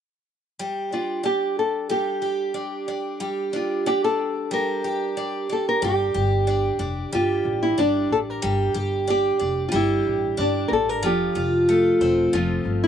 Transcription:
0.59 twelve-string acoustic guitar G3
0.92 twelve-string acoustic guitar D4, nylon-string guitar F4
1.23 twelve-string acoustic guitar D4, nylon-string guitar G4
1.59 nylon-string guitar A4
1.90 twelve-string acoustic guitar G3, nylon-string guitar G4
2.22 twelve-string acoustic guitar G4
2.54 twelve-string acoustic guitar D4
2.88 twelve-string acoustic guitar D4
3.20 twelve-string acoustic guitar G3
3.53 twelve-string acoustic guitar D4, nylon-string guitar F4
3.86 twelve-string acoustic guitar D4, nylon-string guitar G4
4.04 nylon-string guitar A4
4.51 twelve-string acoustic guitar G3, nylon-string guitar A#4
4.84 twelve-string acoustic guitar G4
5.17 twelve-string acoustic guitar D4
5.49 twelve-string acoustic guitar D4, nylon-string guitar A4
5.69 nylon-string guitar A#4
5.82 upright bass G1, twelve-string acoustic guitar G3, nylon-string guitar G4
6.14 upright bass G1, twelve-string acoustic guitar G4
6.47 twelve-string acoustic guitar D4
6.79 upright bass F1, twelve-string acoustic guitar D4
7.12 upright bass G1, twelve-string acoustic guitar G3, nylon-string guitar F4
7.45 upright bass A1
7.63 nylon-string guitar E4
7.78 upright bass G1, twelve-string acoustic guitar D4, nylon-string guitar D4
8.11 upright bass A1, nylon-string guitar A4
8.30 nylon-string guitar A#4
8.42 upright bass G1, twelve-string acoustic guitar G3
8.74 upright bass G1, twelve-string acoustic guitar G4
9.07 twelve-string acoustic guitar D4, nylon-string guitar G4
9.39 upright bass F1, twelve-string acoustic guitar D4
9.69 twelve-string acoustic guitar G3, nylon-string guitar F4
9.74 upright bass G1, nylon-string guitar E4
10.07 upright bass A1
10.37 upright bass G1, twelve-string acoustic guitar D4, nylon-string guitar D4
10.68 upright bass A1, nylon-string guitar A#4
10.73 nylon-string guitar A4
10.89 nylon-string guitar A#4
11.03 upright bass F1, twelve-string acoustic guitar F3, nylon-string guitar G4
11.35 upright bass F1, twelve-string acoustic guitar F4
11.69 twelve-string acoustic guitar A3
12.01 upright bass E1, twelve-string acoustic guitar C4
12.33 upright bass F1, twelve-string acoustic guitar F3, nylon-string guitar F4
12.65 upright bass G1
12.84 nylon-string guitar E4

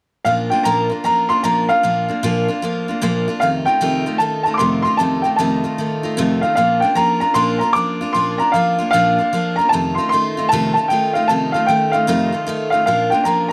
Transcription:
0.25 steel-string acoustic guitar A#2 F3 A#3 D4 F4, upright piano F5
0.50 steel-string acoustic guitar A#3 D4 F4, upright piano G5
0.63 steel-string acoustic guitar A#2 F3 A#3 D4 F4, upright piano A#5
0.90 steel-string acoustic guitar A#3 D4 F4
1.04 steel-string acoustic guitar F3 A#3 D4 F4, upright piano A#5
1.29 steel-string acoustic guitar A#3 D4 F4, upright piano C6
1.43 steel-string acoustic guitar A#2 F3 A#3 D4 F4, upright piano A#5
1.69 steel-string acoustic guitar A#3 D4 F4, upright piano F5
1.83 steel-string acoustic guitar A#2 F3 A#3 D4 F4
2.08 steel-string acoustic guitar A#3 D4 F4
2.23 steel-string acoustic guitar A#2 F3 A#3 D4 F4
2.48 steel-string acoustic guitar A#3 D4 F4
2.62 steel-string acoustic guitar F3 A#3 D4 F4
2.88 steel-string acoustic guitar A#3 D4 F4
3.02 steel-string acoustic guitar A#2 F3 A#3 D4 F4
3.28 steel-string acoustic guitar A#3 D4 F4
3.40 steel-string acoustic guitar F2 C3 D#3 A3 D#4 F4, upright piano F5
3.65 steel-string acoustic guitar D#3 A3 D#4 F4, upright piano G5
3.81 steel-string acoustic guitar F2 C3 D#3 A3 D#4 F4
4.06 steel-string acoustic guitar D#3 A3 D#4 F4
4.18 steel-string acoustic guitar D#3 A3 D#4 F4, upright piano A5
4.43 steel-string acoustic guitar D#4 F4, upright piano A5
4.48 steel-string acoustic guitar D#3 A3
4.54 upright piano C6 D6
4.59 steel-string acoustic guitar F2 C3 D#3 A3 D#4 F4
4.82 steel-string acoustic guitar A3 D#4 F4, upright piano C6
4.87 steel-string acoustic guitar D#3
4.97 steel-string acoustic guitar F2 C3 D#3 A3 D#4 F4, upright piano A5
5.22 steel-string acoustic guitar A3 D#4 F4, upright piano G5
5.26 steel-string acoustic guitar D#3
5.36 steel-string acoustic guitar F2 C3 D#3 A3 D#4 F4, upright piano A5
5.64 steel-string acoustic guitar D#3 A3 D#4 F4
5.78 steel-string acoustic guitar D#3 A3 D#4 F4
6.03 steel-string acoustic guitar D#3 A3 D#4 F4
6.17 steel-string acoustic guitar F2 C3 D#3 A3 D#4 F4
6.41 steel-string acoustic guitar D#3 A3 D#4 F4, upright piano F5
6.55 steel-string acoustic guitar A#2 F3 A#3 D4 F4, upright piano F5
6.80 steel-string acoustic guitar D4 F4, upright piano G5
6.84 steel-string acoustic guitar A#3
6.95 steel-string acoustic guitar F3 A#3 D4 F4, upright piano A#5
7.20 steel-string acoustic guitar A#3 D4 F4, upright piano A#5
7.34 steel-string acoustic guitar A#2 F3 A#3 D4 F4, upright piano C6
7.58 steel-string acoustic guitar D4 F4, upright piano A#5
7.63 steel-string acoustic guitar A#3
7.73 steel-string acoustic guitar F3 A#3 D4, upright piano D6
7.78 steel-string acoustic guitar F4
8.01 steel-string acoustic guitar A#3 D4 F4
8.13 steel-string acoustic guitar A#2 F3 A#3 D4 F4, upright piano C6
8.38 steel-string acoustic guitar A#3 D4 F4, upright piano A#5
8.52 steel-string acoustic guitar F3 A#3 D4, upright piano F5
8.56 steel-string acoustic guitar F4
8.78 steel-string acoustic guitar A#3 D4 F4
8.91 steel-string acoustic guitar A#2 F3 A#3 D4, upright piano F5
8.95 steel-string acoustic guitar F4
9.19 steel-string acoustic guitar A#3 D4 F4
9.33 steel-string acoustic guitar F3 A#3 D4 F4
9.56 steel-string acoustic guitar F4, upright piano A#5
9.60 steel-string acoustic guitar A#3 D4
9.69 steel-string acoustic guitar F2, upright piano A5
9.73 steel-string acoustic guitar C3 D#3 A3 D#4 F4
9.95 steel-string acoustic guitar F4, upright piano C6
9.99 steel-string acoustic guitar D#3 A3 D#4
10.09 steel-string acoustic guitar D#3 A3, upright piano C6
10.13 steel-string acoustic guitar D#4 F4
10.37 steel-string acoustic guitar D#3 A3 D#4 F4
10.49 steel-string acoustic guitar F2 C3 D#3 A3, upright piano A5
10.53 steel-string acoustic guitar D#4 F4
10.74 steel-string acoustic guitar F4, upright piano A5
10.78 steel-string acoustic guitar D#3 A3 D#4
10.88 steel-string acoustic guitar D#3 A3 D#4, upright piano G5
10.93 steel-string acoustic guitar F4
11.13 steel-string acoustic guitar A3 D#4 F4, upright piano F5
11.17 steel-string acoustic guitar D#3
11.28 steel-string acoustic guitar F2 C3 D#3 A3 D#4 F4, upright piano A5
11.52 steel-string acoustic guitar A3 D#4 F4, upright piano F5
11.56 steel-string acoustic guitar D#3
11.66 steel-string acoustic guitar D#3 A3 D#4, upright piano G5
11.71 steel-string acoustic guitar F4
11.91 steel-string acoustic guitar A3 D#4 F4, upright piano F5
11.96 steel-string acoustic guitar D#3
12.07 steel-string acoustic guitar F2 C3 D#3 A3 D#4 F4
12.32 steel-string acoustic guitar D#3 A3 D#4 F4
12.47 steel-string acoustic guitar D#3 A3 D#4 F4
12.70 steel-string acoustic guitar A3 D#4 F4, upright piano F5
12.75 steel-string acoustic guitar D#3
12.86 steel-string acoustic guitar A#2 F3 A#3 D4 F4, upright piano F5
13.10 steel-string acoustic guitar D4 F4, upright piano G5
13.14 steel-string acoustic guitar A#3
13.24 steel-string acoustic guitar F3 A#3 D4 F4, upright piano A#5
13.48 upright piano A#5

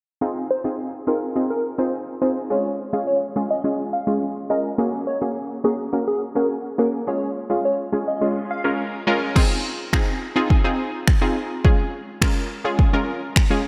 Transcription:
0.21 synth pluck C4 D#4 F4 G#4
0.51 digital synth lead C5
0.64 synth pluck C4 D#4 F4 G#4
1.07 synth pluck C4 D#4 F4 G#4, digital synth lead A#4
1.36 synth pluck C4 D#4 F4 G#4
1.50 digital synth lead A#4
1.78 synth pluck C4 D#4 F4 G#4, digital synth lead C5
2.22 synth pluck C4 D#4 F4 G#4, digital synth lead C5
2.50 synth pluck G#3 C#4 F4 G#4, digital synth lead C#5
2.93 synth pluck G#3 C#4 F4 G#4, digital synth lead F5
3.07 digital synth lead C#5
3.36 synth pluck G#3 C#4 F4 G#4
3.51 digital synth lead D#5
3.64 synth pluck G#3 C#4 F4 G#4
3.93 digital synth lead F5
4.07 synth pluck G#3 C#4 F4 G#4
4.50 synth pluck G#3 C#4 F4 A#4, digital synth lead D#5
4.78 synth pluck A#3 C#4 F#4 G#4
5.07 digital synth lead C#5
5.21 synth pluck A#3 C#4 F#4 G#4
5.64 synth pluck A#3 C#4 F#4 A#4, digital synth lead G#4
5.93 synth pluck A#3 C#4 F#4 A#4
6.08 digital synth lead G#4
6.35 synth pluck A#3 C#4 F#4 G#4, digital synth lead A#4
6.78 synth pluck A#3 C#4 F#4 G#4, digital synth lead A#4
7.07 synth pluck G#3 C#4 F4 G#4, digital synth lead C#5
7.50 synth pluck G#3 C#4 F4 G#4, digital synth lead F5
7.65 digital synth lead C#5
7.92 synth pluck G#3 C#4 F4 G#4
8.08 digital synth lead D#5
8.21 synth pluck G#3 C#4 F4 G#4
8.51 digital synth lead F5
8.64 synth pluck G#3 C#4 F4 A#4
9.07 synth pluck G#3 C#4 F4 A#4
9.36 synth pluck C4 D#4 F4 G#4, kick, crash
9.93 synth pluck C4 D#4 F4 G#4, finger snap, kick
10.36 synth pluck C4 D#4 F4 G#4
10.50 kick
10.64 synth pluck C4 D#4 F4 G#4
11.08 finger snap, kick
11.21 synth pluck C4 D#4 F4 G#4
11.64 synth pluck G#3 C#4 F4 G#4, kick
12.21 synth pluck G#3 C#4 F4 A#4, finger snap, kick
12.64 synth pluck G#3 C#4 F4 G#4
12.79 kick
12.93 synth pluck G#3 C#4 F4 A#4
13.36 finger snap, kick
13.50 synth pluck G#3 C#4 F4 G#4

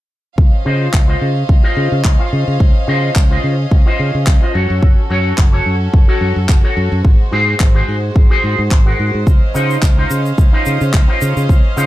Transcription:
0.38 fingered electric bass C#2, string section C#4 C5 D#5 F5, kick
0.65 fingered electric bass C#3, clean electric guitar F4 C5 D#5
0.94 fingered electric bass C#2, kick, clap
1.08 clean electric guitar F4 C5 D#5
1.22 fingered electric bass C#3
1.48 fingered electric bass C#2, muted clean electric guitar stroke, kick
1.63 clean electric guitar F4 C5 D#5
1.77 fingered electric bass C#3
1.92 fingered electric bass C#3
2.04 fingered electric bass C#2, kick, clap
2.19 clean electric guitar F4 C5 F5
2.33 fingered electric bass C#3
2.48 fingered electric bass C#3
2.60 fingered electric bass C#2, kick
2.88 fingered electric bass C#3, clean electric guitar F4 C5 D#5
3.16 fingered electric bass C#2, kick, clap
3.31 clean electric guitar F4 C5 D#5
3.44 fingered electric bass C#3
3.71 fingered electric bass C#2, muted clean electric guitar stroke, kick
3.86 clean electric guitar F4 C5 D#5
3.99 fingered electric bass C#3
4.15 fingered electric bass C#3
4.27 fingered electric bass C#2, kick, clap
4.42 clean electric guitar F4 C5 D#5
4.54 fingered electric bass F#2, clean electric guitar F#4 A4 C#5, string section F#4 A4
4.70 fingered electric bass F#2
4.82 fingered electric bass F#1, kick
5.10 fingered electric bass F#2, clean electric guitar F#4 A4 C#5
5.38 fingered electric bass F#1, kick, clap
5.52 clean electric guitar F#4 A4 C#5
5.66 fingered electric bass F#2
5.93 fingered electric bass F#1, muted clean electric guitar stroke, kick
6.08 clean electric guitar F#4 A4 C#5
6.21 fingered electric bass F#2
6.36 fingered electric bass F#2
6.49 fingered electric bass F#1, kick, clap
6.63 clean electric guitar F#4 A4 C#5
6.77 fingered electric bass F#2
6.92 fingered electric bass F#2
7.05 fingered electric bass G#1, string section G#3 C5, kick
7.32 fingered electric bass G#2, clean electric guitar F#4 G#4 C5
7.60 fingered electric bass G#1, kick, clap
7.75 clean electric guitar F#4 G#4 C5
7.88 fingered electric bass G#2
8.15 fingered electric bass G#1, muted clean electric guitar stroke, kick
8.30 clean electric guitar F#4 G#4 C5
8.44 fingered electric bass G#2
8.59 fingered electric bass G#2
8.71 fingered electric bass G#1, kick, clap
8.86 clean electric guitar F#4 G#4 A#4
9.00 fingered electric bass G#2
9.14 fingered electric bass G#2
9.27 fingered electric bass C#2, string section C#4 D#5 F5, kick, shaker
9.54 fingered electric bass C#3, clean electric guitar D#4 F4 C5, shaker
9.70 shaker
9.82 fingered electric bass C#2, kick, clap, shaker
9.97 clean electric guitar D#4 F4 C5
10.10 fingered electric bass C#3, shaker
10.26 shaker
10.38 fingered electric bass C#2, muted clean electric guitar stroke, kick, shaker
10.53 clean electric guitar D#4 F4 C5
10.66 fingered electric bass C#3, shaker
10.81 fingered electric bass C#3, shaker
10.93 fingered electric bass C#2, kick, clap, shaker
11.08 clean electric guitar D#4 F4 C5
11.21 fingered electric bass C#3, shaker
11.37 fingered electric bass C#3, shaker
11.49 fingered electric bass C#2, kick, shaker
11.76 fingered electric bass C#3, clean electric guitar D#4 F4 C5, shaker

